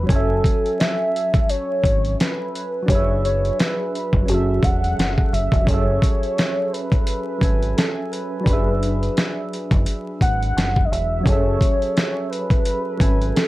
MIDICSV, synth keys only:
0, 0, Header, 1, 2, 480
1, 0, Start_track
1, 0, Key_signature, 3, "minor"
1, 0, Tempo, 697674
1, 61, Time_signature, 4, 2, 24, 8
1, 9273, End_track
2, 0, Start_track
2, 0, Title_t, "Synth keys"
2, 0, Program_c, 0, 88
2, 0, Control_c, 0, 64, 127
2, 23, Note_on_c, 0, 54, 67
2, 45, Note_on_c, 0, 61, 58
2, 65, Note_on_c, 0, 80, 60
2, 69, Control_c, 0, 64, 0
2, 87, Note_on_c, 0, 69, 59
2, 108, Note_on_c, 0, 76, 70
2, 181, Control_c, 0, 64, 127
2, 1935, Note_off_c, 0, 54, 0
2, 1943, Note_on_c, 0, 54, 65
2, 1946, Note_off_c, 0, 61, 0
2, 1956, Note_off_c, 0, 80, 0
2, 1965, Note_on_c, 0, 62, 58
2, 1967, Note_off_c, 0, 69, 0
2, 1977, Note_off_c, 0, 76, 0
2, 1985, Note_on_c, 0, 67, 48
2, 1989, Control_c, 0, 64, 0
2, 2006, Note_on_c, 0, 71, 55
2, 2028, Note_on_c, 0, 76, 71
2, 2032, Note_on_c, 0, 68, 61
2, 2034, Note_off_c, 0, 67, 0
2, 2127, Control_c, 0, 64, 127
2, 2897, Note_off_c, 0, 54, 0
2, 2905, Note_on_c, 0, 54, 59
2, 2914, Note_off_c, 0, 62, 0
2, 2926, Note_on_c, 0, 61, 56
2, 2935, Note_off_c, 0, 71, 0
2, 2937, Note_off_c, 0, 68, 0
2, 2946, Note_off_c, 0, 76, 0
2, 2946, Note_on_c, 0, 68, 54
2, 2951, Control_c, 0, 64, 0
2, 2967, Note_on_c, 0, 69, 52
2, 2987, Note_on_c, 0, 76, 72
2, 3084, Control_c, 0, 64, 127
2, 3855, Note_off_c, 0, 54, 0
2, 3863, Note_on_c, 0, 54, 61
2, 3874, Note_off_c, 0, 61, 0
2, 3884, Note_off_c, 0, 68, 0
2, 3885, Note_on_c, 0, 61, 60
2, 3895, Note_off_c, 0, 69, 0
2, 3905, Note_off_c, 0, 76, 0
2, 3905, Note_on_c, 0, 68, 63
2, 3909, Control_c, 0, 64, 0
2, 3927, Note_on_c, 0, 69, 62
2, 3947, Note_on_c, 0, 76, 73
2, 4011, Control_c, 0, 64, 127
2, 5058, Note_off_c, 0, 54, 0
2, 5069, Note_off_c, 0, 61, 0
2, 5079, Note_off_c, 0, 68, 0
2, 5081, Note_on_c, 0, 54, 48
2, 5090, Note_off_c, 0, 69, 0
2, 5093, Note_on_c, 0, 61, 43
2, 5101, Note_off_c, 0, 76, 0
2, 5102, Note_on_c, 0, 80, 48
2, 5114, Note_on_c, 0, 69, 43
2, 5123, Note_on_c, 0, 76, 53
2, 5775, Note_off_c, 0, 54, 0
2, 5783, Note_on_c, 0, 54, 65
2, 5805, Note_on_c, 0, 62, 60
2, 5817, Note_off_c, 0, 61, 0
2, 5822, Note_off_c, 0, 80, 0
2, 5826, Note_on_c, 0, 67, 48
2, 5828, Note_off_c, 0, 69, 0
2, 5831, Control_c, 0, 64, 0
2, 5832, Note_off_c, 0, 76, 0
2, 5846, Note_on_c, 0, 71, 61
2, 5867, Note_on_c, 0, 76, 69
2, 5870, Note_on_c, 0, 68, 62
2, 5874, Note_off_c, 0, 67, 0
2, 5969, Control_c, 0, 64, 127
2, 7695, Note_off_c, 0, 54, 0
2, 7705, Note_off_c, 0, 62, 0
2, 7708, Note_on_c, 0, 54, 68
2, 7726, Note_off_c, 0, 71, 0
2, 7728, Note_on_c, 0, 61, 60
2, 7737, Note_off_c, 0, 76, 0
2, 7738, Note_off_c, 0, 68, 0
2, 7750, Note_on_c, 0, 68, 64
2, 7751, Control_c, 0, 64, 0
2, 7772, Note_on_c, 0, 69, 64
2, 7791, Note_on_c, 0, 76, 72
2, 7880, Control_c, 0, 64, 127
2, 8900, Note_off_c, 0, 54, 0
2, 8911, Note_off_c, 0, 61, 0
2, 8922, Note_off_c, 0, 68, 0
2, 8926, Note_on_c, 0, 54, 50
2, 8933, Note_off_c, 0, 69, 0
2, 8937, Note_on_c, 0, 61, 48
2, 8943, Note_off_c, 0, 76, 0
2, 8949, Note_on_c, 0, 80, 44
2, 8957, Note_on_c, 0, 69, 42
2, 8967, Note_on_c, 0, 76, 55
2, 9273, Note_off_c, 0, 54, 0
2, 9273, Note_off_c, 0, 61, 0
2, 9273, Note_off_c, 0, 69, 0
2, 9273, Note_off_c, 0, 76, 0
2, 9273, Note_off_c, 0, 80, 0
2, 9273, End_track
0, 0, End_of_file